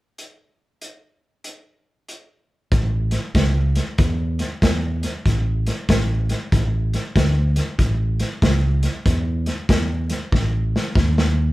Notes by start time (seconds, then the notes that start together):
0.18 closed hi-hat
0.81 closed hi-hat
1.44 closed hi-hat
2.09 closed hi-hat
2.72 A1, kick, snare, closed hi-hat
3.11 snare, closed hi-hat
3.34 C#2, kick, snare, closed hi-hat
3.75 snare, closed hi-hat
3.98 E2, kick, snare, closed hi-hat
4.39 snare, closed hi-hat
4.62 E2, kick, snare, closed hi-hat
5.03 snare, closed hi-hat
5.26 A1, kick, snare, closed hi-hat
5.66 snare, closed hi-hat
5.89 A1, kick, snare, closed hi-hat
6.29 snare, closed hi-hat
6.52 A1, kick, snare, closed hi-hat
6.93 snare, closed hi-hat
7.16 D2, kick, snare, closed hi-hat
7.56 snare, closed hi-hat
7.78 A1, kick, snare, closed hi-hat
8.19 snare, closed hi-hat
8.42 C#2, kick, snare, closed hi-hat
8.83 snare, closed hi-hat
9.06 E2, kick, snare, closed hi-hat
9.46 snare, closed hi-hat
9.69 E2, kick, snare, closed hi-hat
10.10 snare, closed hi-hat
10.32 A1, kick, snare
10.76 snare
10.95 D#2, kick, snare
11.18 snare